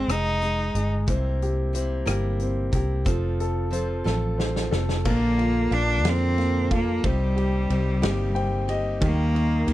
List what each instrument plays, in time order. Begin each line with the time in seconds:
Already playing: grand piano G#3, cello C4
0.08 fingered electric bass F1, grand piano G#3, cello D#4, cross-stick, closed hi-hat
0.42 grand piano G#3, closed hi-hat
0.75 fingered electric bass G1, grand piano G#3, closed hi-hat
1.07 fingered electric bass C2, steel-string acoustic guitar C3 G3 A#3 E4 A#4, grand piano C4, kick, closed hi-hat
1.42 grand piano G4, closed hi-hat
1.73 steel-string acoustic guitar G3 A#3 E4 A#4, grand piano C4, closed hi-hat
2.06 fingered electric bass G1, steel-string acoustic guitar C3 G3 A#3 E4 A#4, grand piano G4, cross-stick, closed hi-hat
2.40 grand piano C4, closed hi-hat
2.72 fingered electric bass C2, steel-string acoustic guitar A#3 E4 A#4, grand piano G4, kick, closed hi-hat
3.05 fingered electric bass F1, steel-string acoustic guitar F3 C4 F4 A4, grand piano F3, kick, closed hi-hat
3.40 grand piano A4, closed hi-hat
3.71 steel-string acoustic guitar F3 C4 F4 A4, grand piano C5, closed hi-hat
4.04 fingered electric bass A1, steel-string acoustic guitar F3 C4 F4 A4, grand piano A4, snare
4.38 grand piano C5, snare
4.56 snare
4.71 fingered electric bass F1, steel-string acoustic guitar C4 F4 A4, grand piano A4, snare
4.89 snare
5.05 fingered electric bass A#1, steel-string acoustic guitar A#2 D3 F3 A#3 D4 A4, grand piano A#3, cello A#3, kick, crash
5.38 grand piano F4, ride
5.70 fingered electric bass A#1, steel-string acoustic guitar F3 A#3 D4 A4, grand piano A#3, cello D4, ride
6.04 fingered electric bass F2, steel-string acoustic guitar A#2 D3 F3 A#3 D4 A4, grand piano F4, snare, ride
6.09 cello C4
6.38 grand piano A#3, snare, ride
6.71 steel-string acoustic guitar F3 A#3 D4 A4, grand piano F4, kick, ride
6.75 cello A#3
7.04 fingered electric bass C2, steel-string acoustic guitar C3 G3 A#3 D#4 G4, cello G3, grand piano C4, kick, ride
7.36 grand piano G4, ride
7.70 fingered electric bass C2, steel-string acoustic guitar G3 A#3 D#4 G4, grand piano C4, ride
8.02 fingered electric bass G1, steel-string acoustic guitar C3 G3 A#3 D#4 G4, grand piano G4, snare, ride
8.35 grand piano C4 G5, ride
8.68 steel-string acoustic guitar A#3 D#4 G4, grand piano G4 D#5, ride
9.01 fingered electric bass D#2, grand piano D#3, steel-string acoustic guitar D#3 G3 A#3 D#4 G4, kick, ride
9.05 cello A#3
9.35 grand piano D#3, ride
9.67 fingered electric bass D#2, grand piano D#3, steel-string acoustic guitar G3 A#3 G4, ride